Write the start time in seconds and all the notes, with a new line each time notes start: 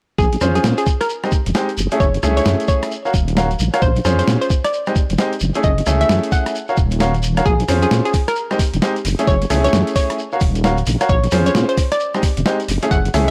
0.18 A#1 G#4, kick, shekere
0.32 closed hi-hat, shekere
0.41 F2 C#4 F4 G#4 C5, cross-stick, shekere
0.55 G#4, closed hi-hat, shekere
0.64 A#2, snare, shekere
0.78 G#4, closed hi-hat, shekere
0.87 kick, shekere
1.01 A#4, cross-stick, closed hi-hat, shekere
1.09 shekere
1.24 G#3 C4 D#4 G4, cross-stick, shekere
1.32 kick, shekere
1.46 F1, closed hi-hat, shekere
1.54 G#3 C4 D#4 G4, snare, shekere
1.69 closed hi-hat, shekere
1.78 F#1, shekere
1.91 A3 C#4 E4 G#4, closed hi-hat, shekere
2.00 F#1 C#5, kick, shekere
2.14 closed hi-hat, shekere
2.23 C#2 A3 C#4 E4 G#4, cross-stick, shekere
2.37 C#5, closed hi-hat, shekere
2.45 F#2, snare, shekere
2.60 closed hi-hat, shekere
2.68 C#5, kick, shekere
2.83 cross-stick, closed hi-hat, shekere
2.91 shekere
3.05 F#4 A#4 C#5 F5, shekere
3.14 D#1, kick, shekere
3.28 closed hi-hat, shekere
3.37 F#4 A#4 C#5 F5, snare, shekere
3.51 closed hi-hat, shekere
3.59 A#1, shekere
3.74 F#4 A#4 C#5 F5, cross-stick, closed hi-hat, shekere
3.82 A#1 C5, kick, shekere
3.96 closed hi-hat, shekere
4.05 F2 C#4 F4 G#4 C5, cross-stick, shekere
4.19 C5, closed hi-hat, shekere
4.28 A#2, snare, shekere
4.41 C5, closed hi-hat, shekere
4.50 kick, shekere
4.64 D5, cross-stick, closed hi-hat, shekere
4.73 shekere
4.86 G#3 C4 D#4 G4, cross-stick, shekere
4.96 kick, shekere
5.10 F1, closed hi-hat, shekere
5.18 G#3 C4 D#4 G4, snare, shekere
5.32 closed hi-hat, shekere
5.40 F#1, shekere
5.54 A3 C#4 E4 G#4, closed hi-hat, shekere
5.63 F#1 D#5, kick, shekere
5.78 closed hi-hat, shekere
5.86 C#2 A3 C#4 E4 G#4, cross-stick, shekere
6.01 E5, closed hi-hat, shekere
6.09 F#2, snare, shekere
6.23 closed hi-hat, shekere
6.32 F#5, kick, shekere
6.46 cross-stick, closed hi-hat, shekere
6.55 shekere
6.68 F#4 A#4 C#5 F5, shekere
6.77 D#1, kick, shekere
6.91 closed hi-hat, shekere
7.00 F#4 A#4 C#5 F5, snare, shekere
7.14 closed hi-hat, shekere
7.23 shekere
7.37 F#4 A#4 C#5 F5, cross-stick, closed hi-hat, shekere
7.45 A#1 G#4, kick, shekere
7.60 closed hi-hat, shekere
7.68 F2 C#4 F4 G#4 C5, cross-stick, open hi-hat, shekere
7.82 G#4, closed hi-hat, shekere
7.91 A#2, snare, shekere
8.05 G#4, closed hi-hat, shekere
8.14 kick, open hi-hat, shekere
8.28 A#4, cross-stick, closed hi-hat, shekere
8.35 shekere
8.51 G#3 C4 D#4 G4, cross-stick, shekere
8.59 kick, open hi-hat, shekere
8.74 F1, closed hi-hat, shekere
8.82 G#3 C4 D#4 G4, snare, shekere
8.96 closed hi-hat, shekere
9.05 F#1, open hi-hat, shekere
9.19 A3 C#4 E4 G#4, closed hi-hat, shekere
9.27 F#1 C#5, kick, shekere
9.42 closed hi-hat, shekere
9.50 C#2 A3 C#4 E4 G#4, cross-stick, open hi-hat, shekere
9.64 C#5, closed hi-hat, shekere
9.73 F#2, snare, shekere
9.87 closed hi-hat, shekere
9.96 C#5, kick, open hi-hat, shekere
10.10 cross-stick, closed hi-hat, shekere
10.19 shekere
10.32 F#4 A#4 C#5 F5, shekere
10.40 D#1, kick, open hi-hat, shekere
10.55 closed hi-hat, shekere
10.64 F#4 A#4 C#5 F5, snare, shekere
10.77 closed hi-hat, shekere
10.86 A#1, open hi-hat, shekere
11.00 F#4 A#4 C#5 F5, cross-stick, closed hi-hat, shekere
11.09 A#1 C#5, kick, shekere
11.24 closed hi-hat, shekere
11.31 F2 C#4 F4 G#4 C5, cross-stick, open hi-hat, shekere
11.46 C#5, closed hi-hat, shekere
11.55 A#2, snare, shekere
11.69 C5, closed hi-hat, shekere
11.78 kick, open hi-hat, shekere
11.92 D5, cross-stick, closed hi-hat, shekere
12.00 shekere
12.14 G#3 C4 D#4 G4, cross-stick, shekere
12.23 kick, open hi-hat, shekere
12.37 F1, closed hi-hat, shekere
12.46 G#3 C4 D#4 G4, snare, shekere
12.60 closed hi-hat, shekere
12.68 F#1, open hi-hat, shekere
12.82 A3 C#4 E4 G#4, closed hi-hat, shekere
12.91 F#1 F#5, kick, shekere
13.05 closed hi-hat, shekere
13.14 C#2 A3 C#4 E4 G#4, cross-stick, open hi-hat, shekere